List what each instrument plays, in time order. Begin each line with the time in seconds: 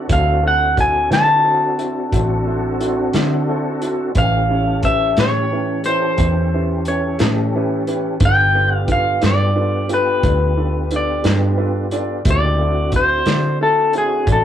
0.09 fingered electric bass D2, tonewheel organ C4 D4 F#4 A4, upright piano E4 F#4 A4 C5, kick, closed hi-hat
0.13 clean electric guitar F5
0.43 upright piano E4 F#4 A4 C5
0.48 clean electric guitar F#5
0.77 upright piano E4 F#4 A4 C5, clean electric guitar G#5, kick, closed hi-hat
1.10 fingered electric bass D3, upright piano E4 F#4 A4 B4, clean electric guitar A5, snare, closed hi-hat
1.44 upright piano E4 F#4 A4 C5
1.78 upright piano E4 F#4 A4 C5, closed hi-hat
2.12 fingered electric bass A1, upright piano E4 F#4 A4 C5, kick, closed hi-hat
2.47 upright piano E4 F#4 A4 C5
2.80 upright piano E4 F#4 A4 C5, closed hi-hat
3.13 fingered electric bass D3, upright piano E4 F#4 A4 C5, snare, closed hi-hat
3.48 upright piano E4 F#4 A4 C5
3.82 upright piano E4 F#4 A4 C5, closed hi-hat
4.15 fingered electric bass A1, tonewheel organ E3 C#4 G4 A4, upright piano C#4 E4 G4 B4, clean electric guitar F5, kick, closed hi-hat
4.50 upright piano C#4 E4 G4 C#5
4.83 upright piano C#4 E4 G4 B4, clean electric guitar E5, kick, closed hi-hat
5.17 fingered electric bass A2, upright piano C#4 E4 G4 C#5, clean electric guitar C#5, snare, closed hi-hat
5.52 upright piano C#4 E4 G4 B4
5.84 upright piano C#4 E4 G4 B4, clean electric guitar C5, closed hi-hat
6.18 fingered electric bass E2, upright piano C#4 E4 G4 B4, kick, closed hi-hat
6.54 upright piano C#4 E4 G4 B4
6.85 upright piano C#4 E4 G4 B4, clean electric guitar C#5, closed hi-hat
7.19 fingered electric bass A2, upright piano C#4 E4 G4 B4, snare, closed hi-hat
7.55 upright piano C#4 E4 G4 B4
7.87 upright piano C#4 E4 G4 B4, closed hi-hat
8.20 fingered electric bass G1, tonewheel organ B3 D4 F4 G4, upright piano D4 F4 A4 B4, kick, closed hi-hat
8.25 clean electric guitar G5
8.55 upright piano D4 F4 A4 B4
8.76 clean electric guitar F5
8.87 upright piano D4 F4 A4 B4, kick, closed hi-hat
8.92 clean electric guitar F5
9.21 fingered electric bass G2, upright piano D4 F4 A4 B4, snare, closed hi-hat
9.26 clean electric guitar D5
9.55 upright piano D4 F4 A4 B4
9.89 upright piano D4 F4 A4 B4, closed hi-hat
9.94 clean electric guitar B4
10.23 fingered electric bass D2, upright piano D4 F4 A4 B4, kick, closed hi-hat
10.57 upright piano D4 F4 A4 B4
10.91 upright piano D4 F4 A4 B4, closed hi-hat
10.96 clean electric guitar D5
11.24 fingered electric bass G2, upright piano D4 F4 A4 B4, snare, closed hi-hat
11.57 upright piano D4 F4 A4 B4
11.91 upright piano D4 F4 A4 D5, closed hi-hat
12.25 fingered electric bass D2, tonewheel organ C#3 A#3 D#4 G4, upright piano E4 F#4 A4 C5, kick, closed hi-hat
12.30 clean electric guitar D5
12.59 tonewheel organ A3 C4 D4 F#4, upright piano E4 F#4 A4 C5
12.92 upright piano E4 F#4 A4 C5, kick, closed hi-hat
12.96 clean electric guitar C5
13.26 fingered electric bass D3, upright piano E4 F#4 A4 D5, snare, closed hi-hat
13.60 upright piano E4 F#4 A4 C5, clean electric guitar A4
13.93 upright piano E4 F#4 A4 C5, closed hi-hat
13.98 clean electric guitar G#4
14.27 fingered electric bass A1, upright piano E4 F#4 A4 D5, kick, closed hi-hat
14.32 clean electric guitar A4